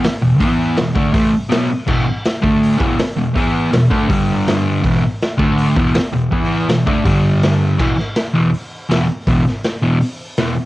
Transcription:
0.03 snare, open hi-hat
0.22 E2 B2
0.39 E3 B3 E4, kick, open hi-hat
0.77 E2 B2, snare, open hi-hat
0.95 D3 A3 D4, kick
1.13 A2 E3 A3, kick, open hi-hat
1.32 muted distorted electric guitar stroke
1.49 B2 F#3 B3, snare, open hi-hat
1.69 muted distorted electric guitar stroke
1.87 E2 B2 E3, kick, crash
2.05 muted distorted electric guitar stroke
2.25 snare, open hi-hat
2.42 D3 A3 D4, kick
2.63 open hi-hat
2.78 E2 B2 E3, kick
2.99 snare, open hi-hat
3.17 E2 B2
3.34 E3 B3 E4, kick, open hi-hat
3.72 E2 B2, snare, open hi-hat
3.90 D3 A3 D4, kick
4.08 G2 D3 G3, kick, open hi-hat
4.47 snare, open hi-hat
4.83 E2 B2 E3, kick, open hi-hat
4.95 snare
5.01 muted distorted electric guitar stroke
5.22 snare, open hi-hat
5.37 D3 A3 D4, kick
5.58 open hi-hat
5.76 E2 B2 E3, kick
5.94 snare, open hi-hat
6.12 E2 B2
6.31 E3 B3 E4, kick, open hi-hat
6.69 E2 B2, snare, open hi-hat
6.86 D3 A3 D4, kick
7.04 G2 D3 G3, kick, open hi-hat
7.42 snare, open hi-hat
7.79 E2 B2 E3, kick, crash
7.99 snare
8.15 snare, open hi-hat
8.34 E2 B2 E3
8.54 open hi-hat
8.89 E2 B2 E3, snare, open hi-hat
9.27 E2 B2 E3, kick, open hi-hat
9.47 snare
9.64 snare, open hi-hat
9.82 E2 B2 E3
10.01 open hi-hat
10.37 E2 B2 E3, snare, open hi-hat

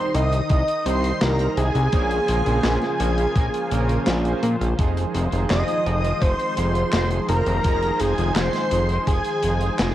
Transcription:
Already playing: D#3 G3 D#4 C5 D#5 C6
0.14 C2 C3 G3 D#4 C5 D#5 D#6, closed hi-hat
0.32 D#3, closed hi-hat
0.49 C2 C3 D#5 D#6, kick, closed hi-hat
0.68 closed hi-hat
0.86 C2 C3 G3 D#4 C5 C6, closed hi-hat
1.04 C4, closed hi-hat
1.21 C2 D#3 A#4 A#5, snare, clap, closed hi-hat
1.39 G3 D#4 C5, closed hi-hat
1.57 C2 C3 G#4 G#5, closed hi-hat
1.75 C2 D#3, closed hi-hat
1.93 A#1 C#3 F3 A#3 C#4 F4 C5, kick, closed hi-hat
2.11 closed hi-hat
2.28 A#1 A#3, closed hi-hat
2.46 A#1 A#3 C#4 A#4 C5, closed hi-hat
2.63 A#1 C#4, snare, clap, closed hi-hat
2.82 snare, closed hi-hat
3.00 A#1 A#3 C#4 C5, closed hi-hat
3.18 C#4, closed hi-hat
3.36 A#1 A#3, kick, closed hi-hat
3.54 closed hi-hat
3.71 A#1 A#3 C#4 A#4, closed hi-hat
3.89 A#4, closed hi-hat
4.07 A#1 C#4, snare, clap, closed hi-hat
4.25 A#3 C#4 C5, closed hi-hat
4.43 A#2 A#3, closed hi-hat
4.61 A#1 C#4, closed hi-hat
4.79 F1 D#3 F3 G#3 D#4 G#4, kick, closed hi-hat
4.97 closed hi-hat
5.14 F1 F3, closed hi-hat
5.32 F1 F3 D#4 F4 G#4, closed hi-hat
5.50 F1 G#3 D#5 D#6, snare, clap, closed hi-hat
5.68 closed hi-hat
5.86 F1 F3 D#4 G#4, closed hi-hat
6.04 G#3, closed hi-hat
6.21 F1 F3 C5 C6, kick, closed hi-hat
6.39 closed hi-hat
6.57 F1 F3 D#4 G#4, closed hi-hat
6.75 F4, closed hi-hat
6.92 F1 G#3 C5 C6, snare, clap, closed hi-hat
7.10 F3 D#4 G#4, closed hi-hat
7.28 F1 F3 A#4 A#5, closed hi-hat
7.46 F1 G#3, closed hi-hat
7.64 F1 F3 D#4 G#4, kick, closed hi-hat
7.82 closed hi-hat
8.00 F1 F3 G#4 G#5, closed hi-hat
8.18 F1 F3 D#4 F4 G#4, closed hi-hat
8.36 F1 G#3 C5 C6, snare, clap, closed hi-hat
8.53 snare, closed hi-hat
8.71 F1 F3 D#4 G#4, closed hi-hat
8.89 G#3, closed hi-hat
9.07 F1 F3 G#4 G#5, kick, closed hi-hat
9.25 closed hi-hat
9.43 F1 F3 D#4 G#4, closed hi-hat
9.61 F4, closed hi-hat
9.79 F1 G#3, snare, clap, closed hi-hat

